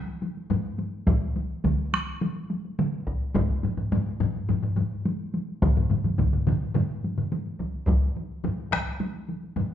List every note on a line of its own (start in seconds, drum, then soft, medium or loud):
0.08 taiko high soft
0.22 taiko high medium
0.37 taiko high soft
0.50 taiko low-mid medium
0.50 taiko high medium
0.65 taiko high soft
0.79 taiko high medium
1.07 taiko loud
1.07 taiko high medium
1.22 taiko high soft
1.36 taiko high medium
1.64 taiko medium
1.64 taiko mid medium
1.64 taiko high medium
1.79 taiko high soft
1.93 taiko rim medium
1.93 taiko high medium
2.07 taiko high soft
2.21 taiko high medium
2.35 taiko high soft
2.50 taiko high medium
2.65 taiko high soft
2.79 taiko mid medium
2.79 taiko high medium
2.93 taiko high soft
3.07 taiko medium
3.21 taiko high soft
3.34 taiko loud
3.34 taiko low-mid medium
3.34 taiko high medium
3.48 taiko high soft
3.63 taiko low-mid medium
3.63 taiko high medium
3.78 taiko low-mid medium
3.92 taiko low-mid medium
3.92 taiko high medium
4.07 taiko high soft
4.20 taiko low-mid medium
4.20 taiko high medium
4.35 taiko high soft
4.49 taiko low-mid medium
4.49 taiko high medium
4.63 taiko low-mid medium
4.63 taiko high soft
4.77 taiko low-mid medium
4.77 taiko high medium
4.92 taiko high soft
5.05 taiko high medium
5.34 taiko high medium
5.49 taiko high soft
5.62 taiko loud
5.62 taiko low-mid medium
5.62 taiko mid medium
5.62 taiko high medium
5.77 taiko low-mid medium
5.77 taiko mid medium
5.77 taiko high soft
5.91 taiko low-mid medium
5.91 taiko mid medium
5.91 taiko high medium
6.04 taiko low-mid medium
6.04 taiko mid medium
6.04 taiko high soft
6.18 taiko medium
6.18 taiko low-mid medium
6.18 taiko mid medium
6.18 taiko high medium
6.33 taiko low-mid medium
6.33 taiko mid medium
6.33 taiko high soft
6.47 taiko low-mid loud
6.47 taiko mid loud
6.47 taiko high soft
6.62 taiko high soft
6.74 taiko low-mid medium
6.74 taiko mid medium
6.74 taiko high medium
6.90 taiko high soft
7.04 taiko high medium
7.18 taiko low-mid medium
7.18 taiko mid medium
7.18 taiko high soft
7.32 taiko high medium
7.46 taiko high soft
7.60 taiko medium
7.60 taiko high medium
7.75 taiko high soft
7.87 taiko medium
7.87 taiko high medium
8.02 taiko high soft
8.16 taiko high medium
8.44 taiko low-mid medium
8.44 taiko high medium
8.59 taiko high soft
8.72 taiko rim medium
8.72 taiko medium
8.72 taiko high medium
8.86 taiko high soft
9.00 taiko high medium
9.14 taiko high soft
9.29 taiko high medium
9.43 taiko high soft
9.56 taiko low-mid medium
9.56 taiko high medium
9.70 taiko high soft